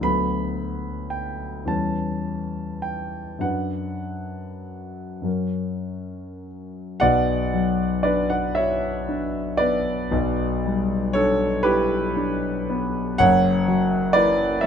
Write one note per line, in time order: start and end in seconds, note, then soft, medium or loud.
0.01 1.63 D2 soft
0.01 1.63 F#3 soft
0.01 1.64 B3 soft
0.01 1.64 B4 soft
0.01 1.12 B5 medium
1.10 1.67 G5 medium
1.65 3.38 E2 soft
1.65 3.38 G3 soft
1.65 3.39 C#4 soft
1.65 3.40 B4 soft
1.65 2.83 A5 medium
2.82 3.43 G5 medium
3.39 5.19 F#2 soft
3.39 5.19 F#3 soft
3.39 5.20 D4 soft
3.39 5.21 B4 soft
3.39 6.45 F#5 medium
5.22 6.97 F#2 soft
5.22 6.98 F#3 soft
5.22 6.98 C#4 soft
5.22 6.99 A#4 soft
7.00 10.08 B1 medium
7.00 10.08 B2 medium
7.00 8.01 D5 medium
7.00 8.04 F#5 loud
7.53 8.37 F#3 soft
8.03 8.88 D4 soft
8.03 8.29 B4 medium
8.03 8.29 D5 medium
8.30 8.55 D5 medium
8.30 8.56 F#5 medium
8.55 9.39 F#4 soft
8.55 9.55 C#5 medium
8.55 9.59 E5 medium
9.09 9.91 D4 soft
9.57 10.13 B3 soft
9.57 11.11 B4 medium
9.57 11.14 D5 medium
10.11 13.15 B1 medium
10.11 13.16 B2 medium
10.65 11.45 G3 medium
11.13 11.94 D4 medium
11.13 11.61 A4 medium
11.13 11.63 C#5 loud
11.63 12.47 E4 medium
11.63 13.15 G4 medium
11.63 13.19 B4 medium
12.17 13.00 D4 medium
12.70 13.20 B3 medium
13.18 14.60 F#1 medium
13.18 14.61 F#2 medium
13.18 14.11 C#5 medium
13.18 14.15 F#5 loud
13.68 14.44 F#3 medium
14.13 14.60 A#3 medium
14.13 14.60 E4 medium
14.13 14.60 B4 medium
14.13 14.63 D5 loud
14.61 14.67 C#5 medium
14.61 14.67 E5 medium